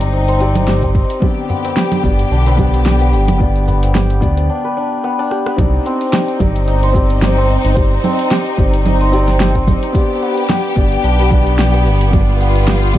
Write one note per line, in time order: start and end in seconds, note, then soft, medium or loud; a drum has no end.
0.00 1.03 G1 medium
0.00 0.38 C4 medium
0.00 0.40 C4 medium
0.00 0.13 D#4 medium
0.00 0.39 D#4 medium
0.00 1.18 D#4 medium
0.00 0.41 G4 medium
0.00 0.68 G4 medium
0.00 0.28 C5 medium
0.00 0.42 D5 medium
0.00 open hi-hat medium
0.00 tabla tin medium
0.00 shaker soft
0.13 2.38 D#4 medium
0.13 tabla na medium
0.13 shaker soft
0.28 1.55 C5 medium
0.28 open hi-hat soft
0.38 1.18 C4 medium
0.38 0.83 C4 medium
0.38 1.19 D#4 medium
0.38 1.20 G4 medium
0.38 shaker medium
0.42 1.20 D5 medium
0.55 open hi-hat medium
0.55 low conga medium
0.55 shaker soft
0.68 1.77 G4 medium
0.68 snare medium
0.68 shaker soft
0.83 1.55 C4 medium
0.83 kick medium
0.83 open hi-hat soft
0.95 kick loud
0.95 shaker medium
1.10 open hi-hat medium
1.10 shaker soft
1.20 4.46 D3 medium
1.20 2.00 B3 medium
1.20 2.01 D4 medium
1.20 4.46 G4 medium
1.20 2.01 G4 medium
1.20 kick loud
1.20 low conga medium
1.20 shaker soft
1.24 2.02 D5 medium
1.49 2.58 B3 medium
1.49 tabla na soft
1.49 tabla ge medium
1.49 shaker medium
1.65 open hi-hat medium
1.65 tabla na medium
1.65 shaker soft
1.77 2.86 G4 medium
1.77 snare loud
1.77 shaker soft
1.92 open hi-hat soft
1.92 low conga medium
2.03 2.24 G1 medium
2.03 2.16 B3 medium
2.03 2.17 D4 medium
2.03 2.17 G4 medium
2.03 2.17 D5 medium
2.03 kick loud
2.03 tabla ge medium
2.03 shaker medium
2.19 open hi-hat medium
2.19 shaker soft
2.31 3.15 B1 loud
2.31 4.49 D4 medium
2.31 shaker soft
2.46 4.64 B4 medium
2.46 open hi-hat soft
2.46 tabla na medium
2.46 tabla tin medium
2.56 3.36 B3 medium
2.56 3.01 B3 medium
2.56 3.37 D4 medium
2.56 3.38 G4 medium
2.56 3.38 D5 medium
2.56 kick loud
2.56 low conga medium
2.56 shaker medium
2.73 open hi-hat medium
2.73 tabla na medium
2.73 shaker soft
2.86 3.94 G4 medium
2.86 snare medium
2.86 shaker soft
3.01 3.67 B3 medium
3.01 open hi-hat soft
3.01 tabla tin medium
3.13 4.23 G1 loud
3.13 shaker medium
3.28 open hi-hat medium
3.28 tabla tin soft
3.28 tabla ge medium
3.28 low conga medium
3.28 shaker soft
3.38 4.18 B3 medium
3.38 4.19 D4 medium
3.38 4.19 G4 medium
3.38 4.20 D5 medium
3.38 kick loud
3.38 tabla tin soft
3.38 shaker soft
3.56 open hi-hat soft
3.68 5.03 B3 medium
3.68 tabla na soft
3.68 tabla tin soft
3.68 tabla ge medium
3.68 shaker medium
3.83 open hi-hat medium
3.83 tabla na medium
3.83 shaker soft
3.95 5.31 G4 medium
3.95 snare loud
3.95 low conga medium
3.95 shaker soft
4.10 open hi-hat soft
4.10 tabla na soft
4.21 4.49 D2 medium
4.21 4.34 B3 medium
4.21 4.35 D4 medium
4.21 4.35 G4 medium
4.21 4.35 D5 medium
4.21 kick loud
4.21 tabla ge loud
4.21 shaker medium
4.37 open hi-hat medium
4.37 tabla tin medium
4.37 shaker soft
4.49 4.77 D4 medium
4.65 5.92 B4 medium
4.77 5.19 D4 medium
5.04 5.46 B3 medium
5.19 6.74 D4 loud
5.31 6.13 G4 medium
5.31 cross-stick medium
5.46 5.92 B3 medium
5.46 cross-stick medium
5.56 5.79 C2 loud
5.56 6.36 C4 medium
5.56 9.91 C4 medium
5.56 6.37 D#4 medium
5.56 9.91 D#4 medium
5.56 6.38 G4 medium
5.56 6.38 D5 medium
5.56 kick loud
5.56 open hi-hat medium
5.56 low conga medium
5.56 shaker soft
5.86 6.95 C4 medium
5.86 shaker medium
6.01 open hi-hat soft
6.01 shaker soft
6.13 7.22 G4 medium
6.13 snare loud
6.13 open hi-hat medium
6.13 shaker soft
6.28 open hi-hat soft
6.39 7.58 G1 medium
6.39 6.53 C4 medium
6.39 6.53 D#4 medium
6.39 6.53 G4 medium
6.39 6.54 D5 medium
6.39 kick loud
6.39 low conga medium
6.39 shaker medium
6.56 open hi-hat soft
6.56 shaker soft
6.68 8.85 D#4 medium
6.68 open hi-hat soft
6.68 shaker soft
6.83 9.01 C5 medium
6.83 open hi-hat soft
6.92 7.73 C4 medium
6.92 7.37 C4 medium
6.92 7.73 D#4 medium
6.92 7.74 G4 medium
6.92 kick loud
6.92 shaker medium
6.97 7.75 D5 medium
7.10 open hi-hat soft
7.10 shaker soft
7.22 8.31 G4 medium
7.22 snare loud
7.22 open hi-hat medium
7.22 low conga medium
7.22 shaker soft
7.37 8.04 C4 medium
7.37 open hi-hat soft
7.49 shaker medium
7.65 7.99 G1 loud
7.65 open hi-hat soft
7.65 shaker soft
7.74 8.54 C4 medium
7.74 8.55 D#4 medium
7.74 8.56 G4 medium
7.74 kick loud
7.74 open hi-hat medium
7.74 shaker soft
7.78 8.56 D5 medium
8.04 9.13 C4 medium
8.04 low conga medium
8.04 shaker medium
8.19 open hi-hat soft
8.19 shaker soft
8.31 9.40 G4 medium
8.31 snare loud
8.31 open hi-hat medium
8.31 shaker soft
8.46 open hi-hat soft
8.57 9.76 G1 medium
8.57 8.71 C4 medium
8.57 8.71 D#4 medium
8.57 8.72 G4 medium
8.57 8.72 D5 medium
8.57 kick loud
8.57 shaker medium
8.74 open hi-hat soft
8.74 shaker soft
8.86 11.10 D#4 medium
8.86 open hi-hat medium
8.86 low conga medium
8.86 shaker soft
9.01 10.28 C5 medium
9.01 open hi-hat soft
9.11 9.91 C4 medium
9.11 9.55 C4 medium
9.11 9.92 D#4 medium
9.11 9.92 G4 medium
9.11 9.93 D5 medium
9.11 shaker medium
9.28 snare soft
9.28 open hi-hat soft
9.28 shaker soft
9.40 10.49 G4 medium
9.40 snare loud
9.40 open hi-hat medium
9.40 shaker soft
9.55 10.28 C4 medium
9.55 kick medium
9.55 open hi-hat soft
9.67 kick loud
9.67 low conga medium
9.67 shaker medium
9.83 open hi-hat soft
9.83 shaker soft
9.93 10.73 B3 medium
9.93 12.98 B3 medium
9.93 10.73 D4 medium
9.93 12.11 G4 loud
9.93 10.74 G4 medium
9.93 10.75 D5 medium
9.93 kick loud
9.93 open hi-hat medium
9.93 shaker soft
10.22 11.31 B3 medium
10.22 shaker medium
10.38 open hi-hat soft
10.38 shaker soft
10.49 11.59 G4 medium
10.49 snare loud
10.49 open hi-hat medium
10.49 low conga medium
10.49 shaker soft
10.65 open hi-hat soft
10.76 10.97 G1 medium
10.76 10.89 B3 medium
10.76 10.89 D4 medium
10.76 10.90 G4 medium
10.76 10.90 D5 medium
10.76 kick loud
10.76 shaker medium
10.92 open hi-hat soft
10.92 shaker medium
11.04 11.87 B1 medium
11.04 12.98 D4 medium
11.04 open hi-hat soft
11.04 shaker soft
11.19 12.98 B4 medium
11.19 open hi-hat soft
11.29 12.09 B3 medium
11.29 11.74 B3 medium
11.29 12.10 D4 medium
11.29 12.10 G4 medium
11.29 12.11 D5 medium
11.29 kick loud
11.29 low conga medium
11.29 shaker medium
11.46 open hi-hat soft
11.46 shaker soft
11.59 12.68 G4 medium
11.59 snare loud
11.59 open hi-hat soft
11.59 shaker soft
11.74 12.40 B3 medium
11.74 open hi-hat soft
11.86 12.96 G1 loud
11.86 shaker medium
12.01 open hi-hat soft
12.01 shaker soft
12.11 12.91 B3 medium
12.11 12.92 D4 medium
12.11 12.98 F4 medium
12.11 12.92 G4 medium
12.11 kick loud
12.11 open hi-hat medium
12.11 low conga medium
12.11 shaker soft
12.15 12.93 D5 medium
12.40 12.98 B3 medium
12.40 shaker medium
12.56 open hi-hat soft
12.56 shaker soft
12.68 12.98 G4 medium
12.68 snare loud
12.68 open hi-hat medium
12.68 shaker soft
12.83 open hi-hat soft
12.94 12.98 D2 medium
12.94 12.98 B3 medium
12.94 12.98 D4 medium
12.94 kick loud
12.94 low conga medium
12.94 shaker medium